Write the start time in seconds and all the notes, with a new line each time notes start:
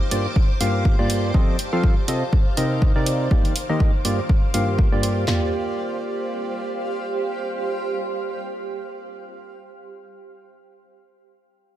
Already playing: C5 D6
0.11 G2 A#3 F4 G4 D5, open hi-hat
0.36 F5, kick
0.40 C5
0.61 G2 A#3 F4 G4 F5, open hi-hat
0.67 A5
0.85 kick
0.99 G2 A#3 F4 G4 D5
1.10 open hi-hat
1.34 F3 C4 F4 A4 D#5, kick
1.59 open hi-hat
1.73 F3 C4 F4 A4 F5
1.83 kick
2.08 C3 C4 F4 A4 D#5, open hi-hat
2.33 kick
2.57 C3 C4 D#4 A#4 D#5, open hi-hat
2.82 kick
2.96 C3 C4 D#4 A#4 D5
3.06 open hi-hat
3.31 D#3 A#3 D#4 G4, kick
3.45 open hi-hat
3.56 open hi-hat
3.65 G4
3.69 D#3 A#3 D#4 G4 D#5
3.80 kick
4.05 G2 A#3 F4 G4 D5, open hi-hat
4.29 kick
4.54 G2 A#3 F4 G4 F5, open hi-hat
4.79 kick
4.92 G2 A#3 F4 G4 D5
5.03 open hi-hat
5.28 A#3 F4 G4 D5, snare, clap, floor tom
5.36 C5
5.44 F5